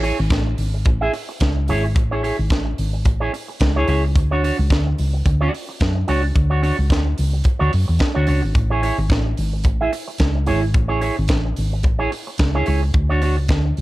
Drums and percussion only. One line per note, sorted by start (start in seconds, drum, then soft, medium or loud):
0.04 open hi-hat medium
0.30 kick loud
0.30 snare loud
0.30 closed hi-hat medium
0.58 open hi-hat medium
0.85 kick loud
0.85 closed hi-hat medium
1.14 open hi-hat medium
1.40 kick loud
1.40 snare loud
1.40 closed hi-hat medium
1.68 open hi-hat medium
1.96 kick loud
1.96 closed hi-hat medium
2.24 open hi-hat medium
2.50 kick loud
2.50 snare loud
2.50 closed hi-hat medium
2.78 open hi-hat medium
3.05 kick loud
3.05 closed hi-hat medium
3.34 open hi-hat medium
3.60 kick loud
3.60 snare loud
3.60 closed hi-hat medium
3.88 open hi-hat medium
4.16 kick loud
4.16 closed hi-hat medium
4.44 open hi-hat medium
4.70 kick loud
4.70 snare loud
4.70 closed hi-hat medium
4.98 open hi-hat medium
5.26 kick loud
5.26 closed hi-hat medium
5.54 open hi-hat medium
5.80 kick loud
5.80 snare loud
5.80 closed hi-hat medium
6.08 open hi-hat medium
6.36 kick loud
6.36 closed hi-hat medium
6.64 open hi-hat medium
6.90 kick loud
6.90 snare loud
6.90 closed hi-hat medium
7.18 open hi-hat medium
7.44 kick loud
7.44 closed hi-hat medium
7.73 open hi-hat medium
7.99 kick loud
7.99 snare loud
7.99 closed hi-hat medium
8.27 open hi-hat medium
8.55 kick loud
8.55 closed hi-hat medium
8.83 open hi-hat medium
9.10 kick loud
9.10 snare loud
9.10 closed hi-hat medium
9.37 open hi-hat medium
9.64 kick loud
9.64 closed hi-hat medium
9.93 open hi-hat medium
10.18 kick loud
10.18 snare loud
10.18 closed hi-hat medium
10.46 open hi-hat medium
10.74 kick loud
10.74 closed hi-hat medium
11.02 open hi-hat medium
11.28 kick loud
11.28 snare loud
11.28 closed hi-hat medium
11.56 open hi-hat medium
11.83 kick loud
11.83 closed hi-hat medium
12.12 open hi-hat medium
12.38 kick loud
12.38 snare loud
12.38 closed hi-hat medium
12.66 open hi-hat medium
12.94 kick loud
12.94 closed hi-hat medium
13.22 open hi-hat medium
13.48 kick loud
13.48 snare loud
13.48 closed hi-hat medium
13.77 open hi-hat medium